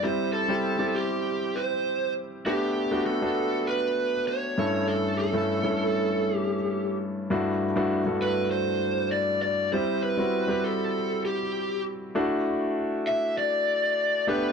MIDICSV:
0, 0, Header, 1, 3, 480
1, 0, Start_track
1, 0, Tempo, 606061
1, 28, Time_signature, 4, 2, 24, 8
1, 11502, End_track
2, 0, Start_track
2, 0, Title_t, "Lead electric guitar"
2, 0, Program_c, 0, 29
2, 29, Note_on_c, 0, 72, 88
2, 258, Note_off_c, 0, 72, 0
2, 261, Note_on_c, 0, 69, 82
2, 750, Note_on_c, 0, 67, 73
2, 759, Note_off_c, 0, 69, 0
2, 1234, Note_on_c, 0, 72, 78
2, 1243, Note_off_c, 0, 67, 0
2, 1679, Note_off_c, 0, 72, 0
2, 1950, Note_on_c, 0, 67, 78
2, 2423, Note_off_c, 0, 67, 0
2, 2426, Note_on_c, 0, 69, 83
2, 2910, Note_on_c, 0, 71, 91
2, 2921, Note_off_c, 0, 69, 0
2, 3383, Note_off_c, 0, 71, 0
2, 3386, Note_on_c, 0, 73, 95
2, 3863, Note_on_c, 0, 69, 83
2, 3881, Note_off_c, 0, 73, 0
2, 4089, Note_off_c, 0, 69, 0
2, 4110, Note_on_c, 0, 69, 76
2, 5037, Note_off_c, 0, 69, 0
2, 5037, Note_on_c, 0, 67, 76
2, 5517, Note_off_c, 0, 67, 0
2, 6511, Note_on_c, 0, 71, 82
2, 6740, Note_off_c, 0, 71, 0
2, 6743, Note_on_c, 0, 72, 91
2, 7194, Note_off_c, 0, 72, 0
2, 7222, Note_on_c, 0, 74, 96
2, 7453, Note_off_c, 0, 74, 0
2, 7463, Note_on_c, 0, 74, 91
2, 7702, Note_off_c, 0, 74, 0
2, 7705, Note_on_c, 0, 72, 91
2, 7941, Note_off_c, 0, 72, 0
2, 7944, Note_on_c, 0, 71, 87
2, 8427, Note_on_c, 0, 69, 76
2, 8440, Note_off_c, 0, 71, 0
2, 8910, Note_off_c, 0, 69, 0
2, 8913, Note_on_c, 0, 67, 74
2, 9359, Note_off_c, 0, 67, 0
2, 10353, Note_on_c, 0, 76, 93
2, 10595, Note_off_c, 0, 76, 0
2, 10598, Note_on_c, 0, 74, 99
2, 11281, Note_off_c, 0, 74, 0
2, 11318, Note_on_c, 0, 71, 83
2, 11502, Note_off_c, 0, 71, 0
2, 11502, End_track
3, 0, Start_track
3, 0, Title_t, "Grand piano"
3, 0, Program_c, 1, 0
3, 0, Control_c, 1, 64, 127
3, 24, Note_on_c, 1, 55, 68
3, 28, Note_on_c, 1, 60, 61
3, 30, Note_on_c, 1, 64, 60
3, 34, Note_on_c, 1, 67, 72
3, 38, Control_c, 1, 64, 0
3, 163, Control_c, 1, 64, 127
3, 294, Note_off_c, 1, 55, 0
3, 295, Note_off_c, 1, 60, 0
3, 296, Note_off_c, 1, 64, 0
3, 298, Note_off_c, 1, 67, 0
3, 383, Note_on_c, 1, 55, 69
3, 386, Note_on_c, 1, 60, 61
3, 389, Note_on_c, 1, 64, 60
3, 393, Note_on_c, 1, 67, 72
3, 564, Note_off_c, 1, 55, 0
3, 565, Note_off_c, 1, 60, 0
3, 567, Note_off_c, 1, 64, 0
3, 569, Note_off_c, 1, 67, 0
3, 619, Note_on_c, 1, 55, 63
3, 624, Note_on_c, 1, 60, 60
3, 625, Note_on_c, 1, 64, 57
3, 630, Note_on_c, 1, 67, 74
3, 1337, Note_off_c, 1, 55, 0
3, 1339, Note_off_c, 1, 60, 0
3, 1340, Note_off_c, 1, 64, 0
3, 1343, Note_off_c, 1, 67, 0
3, 1945, Note_on_c, 1, 57, 67
3, 1948, Note_on_c, 1, 59, 62
3, 1950, Note_on_c, 1, 62, 62
3, 1955, Note_on_c, 1, 67, 76
3, 1958, Control_c, 1, 64, 0
3, 2091, Control_c, 1, 64, 127
3, 2214, Note_off_c, 1, 57, 0
3, 2215, Note_off_c, 1, 59, 0
3, 2217, Note_off_c, 1, 62, 0
3, 2219, Note_off_c, 1, 67, 0
3, 2305, Note_on_c, 1, 57, 69
3, 2309, Note_on_c, 1, 59, 62
3, 2311, Note_on_c, 1, 62, 59
3, 2315, Note_on_c, 1, 66, 78
3, 2485, Note_off_c, 1, 57, 0
3, 2487, Note_off_c, 1, 59, 0
3, 2488, Note_off_c, 1, 62, 0
3, 2490, Note_off_c, 1, 66, 0
3, 2547, Note_on_c, 1, 57, 66
3, 2551, Note_on_c, 1, 59, 60
3, 2553, Note_on_c, 1, 62, 64
3, 2556, Note_on_c, 1, 66, 76
3, 3261, Note_off_c, 1, 57, 0
3, 3263, Note_off_c, 1, 59, 0
3, 3264, Note_off_c, 1, 62, 0
3, 3265, Note_off_c, 1, 66, 0
3, 3625, Note_on_c, 1, 43, 72
3, 3627, Note_on_c, 1, 57, 67
3, 3629, Note_on_c, 1, 61, 64
3, 3632, Note_on_c, 1, 64, 67
3, 3634, Note_on_c, 1, 69, 82
3, 3640, Control_c, 1, 64, 0
3, 3786, Control_c, 1, 64, 127
3, 4106, Note_off_c, 1, 43, 0
3, 4107, Note_off_c, 1, 57, 0
3, 4109, Note_off_c, 1, 61, 0
3, 4110, Note_off_c, 1, 64, 0
3, 4111, Note_off_c, 1, 69, 0
3, 4223, Note_on_c, 1, 43, 72
3, 4228, Note_on_c, 1, 57, 65
3, 4228, Note_on_c, 1, 61, 62
3, 4232, Note_on_c, 1, 64, 65
3, 4234, Note_on_c, 1, 69, 72
3, 4404, Note_off_c, 1, 43, 0
3, 4406, Note_off_c, 1, 57, 0
3, 4406, Note_off_c, 1, 61, 0
3, 4408, Note_off_c, 1, 64, 0
3, 4409, Note_off_c, 1, 69, 0
3, 4462, Note_on_c, 1, 43, 63
3, 4466, Note_on_c, 1, 57, 64
3, 4468, Note_on_c, 1, 61, 62
3, 4470, Note_on_c, 1, 64, 60
3, 4473, Note_on_c, 1, 69, 77
3, 5179, Note_off_c, 1, 43, 0
3, 5180, Note_off_c, 1, 57, 0
3, 5182, Note_off_c, 1, 61, 0
3, 5182, Note_off_c, 1, 64, 0
3, 5184, Note_off_c, 1, 69, 0
3, 5784, Note_on_c, 1, 43, 80
3, 5786, Note_on_c, 1, 57, 72
3, 5788, Note_on_c, 1, 62, 72
3, 5791, Note_on_c, 1, 64, 78
3, 5793, Note_on_c, 1, 66, 90
3, 5797, Control_c, 1, 64, 0
3, 5933, Control_c, 1, 64, 127
3, 6053, Note_off_c, 1, 43, 0
3, 6055, Note_off_c, 1, 57, 0
3, 6056, Note_off_c, 1, 62, 0
3, 6057, Note_off_c, 1, 64, 0
3, 6058, Note_off_c, 1, 66, 0
3, 6143, Note_on_c, 1, 43, 84
3, 6146, Note_on_c, 1, 57, 76
3, 6149, Note_on_c, 1, 62, 73
3, 6151, Note_on_c, 1, 64, 77
3, 6153, Note_on_c, 1, 66, 93
3, 6324, Note_off_c, 1, 43, 0
3, 6325, Note_off_c, 1, 57, 0
3, 6327, Note_off_c, 1, 62, 0
3, 6328, Note_off_c, 1, 64, 0
3, 6329, Note_off_c, 1, 66, 0
3, 6381, Note_on_c, 1, 43, 66
3, 6386, Note_on_c, 1, 57, 63
3, 6387, Note_on_c, 1, 62, 61
3, 6388, Note_on_c, 1, 64, 61
3, 6391, Note_on_c, 1, 69, 75
3, 7098, Note_off_c, 1, 43, 0
3, 7101, Note_off_c, 1, 57, 0
3, 7101, Note_off_c, 1, 62, 0
3, 7101, Note_off_c, 1, 64, 0
3, 7103, Note_off_c, 1, 69, 0
3, 7705, Note_on_c, 1, 55, 69
3, 7708, Note_on_c, 1, 60, 64
3, 7711, Note_on_c, 1, 64, 65
3, 7712, Note_on_c, 1, 67, 74
3, 7718, Control_c, 1, 64, 0
3, 7871, Control_c, 1, 64, 127
3, 7974, Note_off_c, 1, 55, 0
3, 7976, Note_off_c, 1, 60, 0
3, 7977, Note_off_c, 1, 64, 0
3, 7978, Note_off_c, 1, 67, 0
3, 8058, Note_on_c, 1, 55, 69
3, 8064, Note_on_c, 1, 60, 61
3, 8066, Note_on_c, 1, 64, 64
3, 8069, Note_on_c, 1, 66, 72
3, 8241, Note_off_c, 1, 55, 0
3, 8244, Note_off_c, 1, 60, 0
3, 8245, Note_off_c, 1, 64, 0
3, 8247, Note_off_c, 1, 66, 0
3, 8300, Note_on_c, 1, 55, 71
3, 8302, Note_on_c, 1, 60, 58
3, 8307, Note_on_c, 1, 64, 61
3, 8309, Note_on_c, 1, 67, 73
3, 9017, Note_off_c, 1, 55, 0
3, 9018, Note_off_c, 1, 60, 0
3, 9021, Note_off_c, 1, 64, 0
3, 9022, Note_off_c, 1, 67, 0
3, 9622, Note_on_c, 1, 57, 79
3, 9627, Note_on_c, 1, 62, 79
3, 9628, Note_on_c, 1, 64, 77
3, 9631, Note_on_c, 1, 66, 91
3, 9636, Control_c, 1, 64, 0
3, 9787, Control_c, 1, 64, 127
3, 10339, Note_off_c, 1, 57, 0
3, 10341, Note_off_c, 1, 62, 0
3, 10342, Note_off_c, 1, 64, 0
3, 10343, Note_off_c, 1, 66, 0
3, 11303, Note_on_c, 1, 57, 72
3, 11308, Note_on_c, 1, 59, 73
3, 11311, Note_on_c, 1, 62, 74
3, 11313, Note_on_c, 1, 67, 84
3, 11318, Control_c, 1, 64, 0
3, 11441, Control_c, 1, 64, 127
3, 11502, Note_off_c, 1, 57, 0
3, 11502, Note_off_c, 1, 59, 0
3, 11502, Note_off_c, 1, 62, 0
3, 11502, Note_off_c, 1, 67, 0
3, 11502, End_track
0, 0, End_of_file